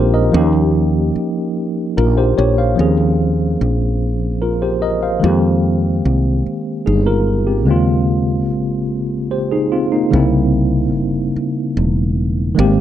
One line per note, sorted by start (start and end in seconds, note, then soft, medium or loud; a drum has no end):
0.00 0.29 A#1 medium
0.00 0.28 G3 medium
0.00 0.28 A#3 medium
0.00 0.34 C4 medium
0.00 0.34 F4 medium
0.00 0.34 G4 medium
0.00 0.14 A#4 medium
0.00 0.12 C5 medium
0.14 0.52 A#4 medium
0.14 0.52 D#5 medium
0.32 1.11 D#2 loud
0.32 2.73 F3 medium
0.32 2.73 A#3 medium
0.32 2.74 C#4 medium
0.32 2.75 D#4 medium
0.37 1.94 G4 medium
1.16 muted fretless electric bass stroke soft
1.97 2.33 A#1 medium
1.97 2.16 F4 soft
1.97 2.16 A#4 medium
2.18 2.36 G4 medium
2.18 2.36 C5 medium
2.38 2.74 A#1 medium
2.38 2.57 G4 medium
2.38 2.56 C#5 medium
2.58 2.96 C5 medium
2.58 2.96 F5 medium
2.76 3.56 D#2 medium
2.76 5.17 F3 medium
2.76 5.18 A#3 medium
2.76 5.18 C4 medium
2.76 5.19 C#4 medium
2.81 4.39 G#4 medium
3.61 5.19 A#1 medium
4.42 4.61 F4 soft
4.42 4.60 A#4 medium
4.62 4.81 G4 medium
4.62 4.81 C5 medium
4.82 5.01 A#4 soft
4.82 5.01 D#5 medium
5.03 5.41 C5 soft
5.03 5.41 F5 medium
5.20 7.62 D#3 medium
5.20 7.62 G#3 medium
5.20 7.63 A#3 medium
5.24 6.00 F2 medium
5.24 6.83 C4 medium
5.24 6.84 G4 medium
6.05 6.41 C2 medium
6.46 muted fretless electric bass stroke soft
6.86 7.69 G1 medium
6.86 7.05 D#4 soft
6.86 7.05 G#4 medium
7.06 7.45 F4 medium
7.06 7.45 A#4 medium
7.47 7.68 C4 soft
7.47 7.85 G4 medium
7.66 8.50 D#2 loud
7.66 10.07 C#3 medium
7.66 10.08 G#3 medium
7.66 9.27 A#3 medium
7.66 9.28 C4 medium
7.71 9.29 F4 medium
8.50 10.09 A#1 medium
9.31 9.50 G4 soft
9.31 9.50 C5 medium
9.51 9.71 D#4 medium
9.51 9.70 G#4 medium
9.72 9.91 C4 medium
9.72 9.91 F4 medium
9.92 10.11 A#3 soft
9.92 10.30 D#4 medium
10.10 10.95 C2 medium
10.10 12.52 C#3 medium
10.10 12.52 G3 medium
10.10 12.53 A#3 medium
10.10 12.54 C4 medium
10.15 12.54 E4 medium
10.95 11.31 G1 medium
11.36 muted fretless electric bass stroke soft
11.77 12.54 E1 medium
12.55 12.81 G#1 loud
12.55 12.81 D#3 medium
12.55 12.81 G#3 medium
12.55 12.81 A#3 medium
12.55 12.81 C4 medium
12.60 12.81 G4 medium